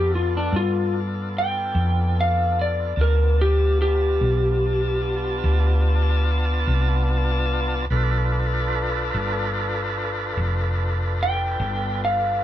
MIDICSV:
0, 0, Header, 1, 4, 480
1, 0, Start_track
1, 0, Tempo, 819672
1, 1749, Time_signature, 12, 3, 24, 8
1, 7284, End_track
2, 0, Start_track
2, 0, Title_t, "Electric slide guitar"
2, 0, Program_c, 0, 29
2, 0, Note_on_c, 0, 67, 78
2, 79, Note_off_c, 0, 67, 0
2, 89, Note_on_c, 0, 65, 67
2, 196, Note_off_c, 0, 65, 0
2, 217, Note_on_c, 0, 62, 71
2, 320, Note_off_c, 0, 62, 0
2, 330, Note_on_c, 0, 65, 93
2, 552, Note_off_c, 0, 65, 0
2, 811, Note_on_c, 0, 79, 85
2, 1266, Note_off_c, 0, 79, 0
2, 1292, Note_on_c, 0, 77, 71
2, 1514, Note_off_c, 0, 77, 0
2, 1532, Note_on_c, 0, 74, 73
2, 1753, Note_off_c, 0, 74, 0
2, 1764, Note_on_c, 0, 70, 77
2, 1990, Note_off_c, 0, 70, 0
2, 1999, Note_on_c, 0, 67, 81
2, 2227, Note_off_c, 0, 67, 0
2, 2235, Note_on_c, 0, 67, 92
2, 3649, Note_off_c, 0, 67, 0
2, 6574, Note_on_c, 0, 79, 85
2, 7030, Note_off_c, 0, 79, 0
2, 7054, Note_on_c, 0, 77, 75
2, 7277, Note_off_c, 0, 77, 0
2, 7284, End_track
3, 0, Start_track
3, 0, Title_t, "Tonewheel organ"
3, 0, Program_c, 1, 16
3, 0, Note_on_c, 1, 59, 65
3, 0, Note_on_c, 1, 62, 64
3, 0, Note_on_c, 1, 65, 58
3, 0, Note_on_c, 1, 69, 58
3, 1720, Note_off_c, 1, 69, 0
3, 1721, Note_off_c, 1, 65, 0
3, 1723, Note_off_c, 1, 59, 0
3, 1724, Note_off_c, 1, 62, 0
3, 1733, Note_on_c, 1, 62, 66
3, 1733, Note_on_c, 1, 81, 62
3, 1738, Note_on_c, 1, 59, 66
3, 1738, Note_on_c, 1, 65, 72
3, 4599, Note_off_c, 1, 62, 0
3, 4599, Note_off_c, 1, 81, 0
3, 4601, Note_off_c, 1, 59, 0
3, 4601, Note_off_c, 1, 65, 0
3, 4629, Note_on_c, 1, 71, 73
3, 4633, Note_on_c, 1, 62, 69
3, 4635, Note_on_c, 1, 65, 66
3, 4636, Note_on_c, 1, 69, 77
3, 7284, Note_off_c, 1, 62, 0
3, 7284, Note_off_c, 1, 65, 0
3, 7284, Note_off_c, 1, 69, 0
3, 7284, Note_off_c, 1, 71, 0
3, 7284, End_track
4, 0, Start_track
4, 0, Title_t, "Fingered electric bass"
4, 0, Program_c, 2, 33
4, 0, Note_on_c, 2, 41, 87
4, 284, Note_off_c, 2, 41, 0
4, 307, Note_on_c, 2, 43, 85
4, 1006, Note_off_c, 2, 43, 0
4, 1023, Note_on_c, 2, 41, 87
4, 1724, Note_off_c, 2, 41, 0
4, 1740, Note_on_c, 2, 38, 71
4, 2443, Note_off_c, 2, 38, 0
4, 2466, Note_on_c, 2, 35, 81
4, 3166, Note_off_c, 2, 35, 0
4, 3185, Note_on_c, 2, 38, 91
4, 3886, Note_off_c, 2, 38, 0
4, 3908, Note_on_c, 2, 36, 93
4, 4608, Note_off_c, 2, 36, 0
4, 4629, Note_on_c, 2, 35, 79
4, 5329, Note_off_c, 2, 35, 0
4, 5354, Note_on_c, 2, 31, 87
4, 6052, Note_off_c, 2, 31, 0
4, 6073, Note_on_c, 2, 29, 91
4, 6772, Note_off_c, 2, 29, 0
4, 6791, Note_on_c, 2, 31, 101
4, 7284, Note_off_c, 2, 31, 0
4, 7284, End_track
0, 0, End_of_file